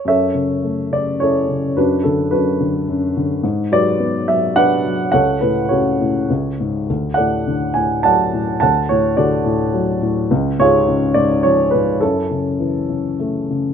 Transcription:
<<
  \new Staff \with { instrumentName = "Upright piano" } { \time 3/4 \key fis \minor \tempo 4 = 105 << { e''4. d''8 cis''4 | b'8 a'8 b'4 r4 | r8 d''4 e''8 fis''4 | fis''8 b'8 cis''4. r8 |
r8 fis''4 gis''8 a''4 | a''8 cis''8 d''4. r8 | r8 cis''4 d''8 cis''8 b'8 | a'2 r4 | } \\ { <a' cis''>4. r8 <e' a'>4 | <d' fis'>4 <d' fis'>4. r8 | r8 <fis' b'>4. <b' d''>4 | <a' cis''>4 <fis' a'>4. r8 |
r8 <a' d''>4. <d'' fis''>4 | fis''4 <fis' a'>4. r8 | r8 <eis' gis'>4. r4 | <cis' e'>2 r4 | } >> }
  \new Staff \with { instrumentName = "Upright piano" } { \clef bass \time 3/4 \key fis \minor fis,8 cis8 a8 cis8 cis'8 cis8 | fis,8 d8 fis,8 d8 fis,8 d8 | gis,8 fis8 b8 fis8 d'8 fis8 | cis,8 a,8 cis8 a,8 cis,8 gis,8 |
d,8 a,8 d8 a,8 fis8 a,8 | d,8 a,8 d8 a,8 fis8 a,8 | cis,8 gis,8 cis8 gis,8 eis8 gis,8 | fis,8 cis8 e8 cis8 a8 cis8 | }
>>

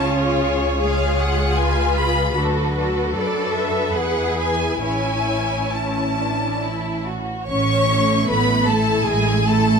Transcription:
<<
  \new Staff \with { instrumentName = "Violin section" } { \time 3/4 \key a \major \tempo 4 = 76 r4 eis''8 fis''8 gis''8 b''8 | r4 d''8 e''8 fis''8 gis''8 | gis''4 a''4. r8 | cis'''4 b''8 a''8 gis''8 a''8 | }
  \new Staff \with { instrumentName = "Violin section" } { \time 3/4 \key a \major << { cis''2 b'4 | a'8 a'8 b'2 | cis''4 cis'8 d'8 e'8 fis'8 | cis''4 b'8 a'8 gis'8 a'8 | } \\ { gis'4 gis'2 | b'4 a'4 gis'4 | e'4 r2 | r2. | } >> }
  \new Staff \with { instrumentName = "Cello section" } { \time 3/4 \key a \major eis'4 gis'4 eis'4 | fis'4 a'4 gis'4 | e'2~ e'8 r8 | cis'4 b8 a8 gis8 a8 | }
  \new Staff \with { instrumentName = "Viola section" } { \time 3/4 \key a \major << { eis'4 eis'2 | d'4 d'4 e'4 | cis'2~ cis'8. r16 | r8 e'4 e'4 e'8 | } \\ { cis'4 gis2 | fis2 e4 | e2~ e8. r16 | r8 a4 a4 a8 | } >> }
  \new Staff \with { instrumentName = "Double bass section" } { \clef bass \time 3/4 \key a \major cis,2. | d,4 fis,4 e,4 | a,,2~ a,,8. r16 | a,,4 a,,4 a,,4 | }
>>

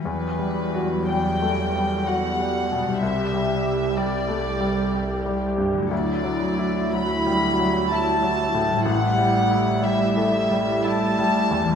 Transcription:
<<
  \new Staff \with { instrumentName = "Violin section" } { \time 3/4 \key e \minor \tempo 4 = 62 b'4 g''4 fis''4 | e''4 d''4. r8 | d''4 b''4 a''4 | fis''4 e''4 a''4 | }
  \new Staff \with { instrumentName = "Grand piano" } { \clef bass \time 3/4 \key e \minor \tuplet 3/2 { e,8 g8 fis'8 g8 a8 g8 fis'8 g8 b,8 } | \tuplet 3/2 { c,8 g8 g'8 g8 a8 g8 g'8 g8 g,8 } | \tuplet 3/2 { d,8 fis8 e'8 fis8 g8 fis8 e'8 fis8 a,8 } | \tuplet 3/2 { a,,8 g8 e'8 g8 a8 g8 e'8 g8 e,8 } | }
  \new Staff \with { instrumentName = "Harp" } { \clef bass \time 3/4 \key e \minor <e fis g b'>2. | <c g g' c''>2. | <d fis e' a'>2. | <a, g e' c''>2. | }
  \new Staff \with { instrumentName = "Viola section" } { \clef bass \time 3/4 \key e \minor << { fis2. | g'2. | e'2.~ | e'2. | } \\ { g2.~ | g2. | fis2. | g2. | } >> }
  \new Staff \with { instrumentName = "Cello section" } { \clef bass \time 3/4 \key e \minor e,2. | c,2. | d,2. | a,2. | }
>>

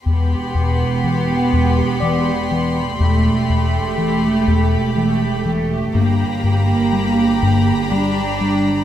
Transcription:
<<
  \new Staff \with { instrumentName = "Violin section" } { \time 3/4 \key e \minor \tempo 4 = 61 << { c'''2.~ | c'''4. r4. | b''2. | } \\ { b''2.~ | b''2~ b''8 r8 | bes''2. | } >> }
  \new Staff \with { instrumentName = "Celesta" } { \time 3/4 \key e \minor r2 <d'' d'''>4~ | <d'' d'''>2 r4 | r2. | }
  \new Staff \with { instrumentName = "Violin section" } { \time 3/4 \key e \minor g'2. | g'2. | g'2. | }
  \new Staff \with { instrumentName = "Cello section" } { \time 3/4 \key e \minor b2. | a2 a4 | bes2 d'4 | }
  \new Staff \with { instrumentName = "Analog synth bass" } { \clef bass \time 3/4 \key e \minor e,8 e,8 e8 e,8 e8 e8 | e,8 e,8 e8 e,8 e8 e8 | g,8 g,8 g8 g,8 g8 g8 | }
  \new Staff \with { instrumentName = "Double bass section" } { \clef bass \time 3/4 \key e \minor e,,2. | e,,2. | g,,2. | }
>>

